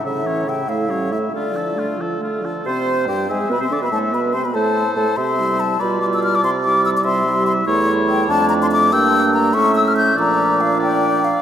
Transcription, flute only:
\new Staff \with { instrumentName = "Flute" } { \time 6/8 \key d \minor \tempo 4. = 95 e''4 g''8 f''4 e''8 | d''4. r4. | \key c \major c'''4 g''8 gis''8 b''16 c'''16 d'''16 b''16 | a''8 b''8 c'''16 b''16 a''4 a''8 |
c'''4 a''8 b''8 d'''16 e'''16 f'''16 d'''16 | c'''8 d'''8 e'''16 d'''16 c'''4 c'''8 | \key bes \lydian cis'''4 g''8 a''8 bes''16 c'''16 d'''8 | e'''4 bes''8 cis'''8 e'''16 f'''16 g'''8 |
bes''4 f''8 g''4 f''8 | }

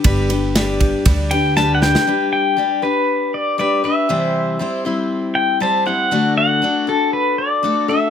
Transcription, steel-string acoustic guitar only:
\new Staff \with { instrumentName = "Steel-string acoustic guitar" } { \time 4/4 \key g \major \tempo 4 = 119 <g d' g' b'>8 <d' g' b'>8 <g d' g' b'>4 <g d' g' b'>8 <d' g' b'>8 <g d' g' b'>8 <d' g' b'>8 | <g d' g' b'>4 <g d' g' b'>8 <d' g' b'>4. <g d' g' b'>8 <d' g' b'>8 | <c e g c' e' c''>4 <g c' e' c''>8 <g c' e' c''>4. <g c' e' c''>8 <g c' e' c''>8 | <d a d' fis' a'>4 <a d' fis' a'>8 <d' fis' a'>4. <a d' fis' a'>8 <d' fis' a'>8 | }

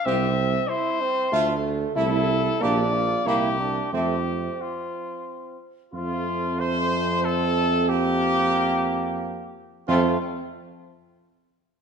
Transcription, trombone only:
\new Staff \with { instrumentName = "Trombone" } { \time 3/4 \key f \major \tempo 4 = 91 c'4 e'8 c'8 a4 | e'4 d'8 f'8 e'8 d'8 | c'2~ c'8 r8 | a2. |
bes2~ bes8 r8 | a8 r2 r8 | }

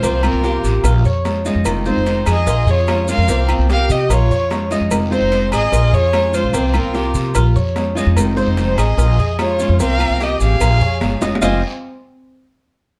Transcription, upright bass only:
\new Staff \with { instrumentName = "Upright bass" } { \clef bass \time 4/4 \key f \minor \tempo 4 = 148 c,8. c,8. a,,8 bes,,8 f,4~ f,16 f,16 | f,,8. f,,8. f,8 bes,,8 f,4~ f,16 f,16 | c,8. c,8. c8 bes,,8 f,4~ f,16 f,16 | f,,8. f,,8. a,,8 bes,,8 f,4~ f,16 b,,16 |
c,8. c,8. c8 bes,,8 f,4~ f,16 f,16 | f,,8. f,,8. a,,8 bes,,8 f,4~ f,16 f,16 | c,8. c,8. a,,8 bes,,8 f,8 g,,8 f,,8 | f,,8 r2. r8 | }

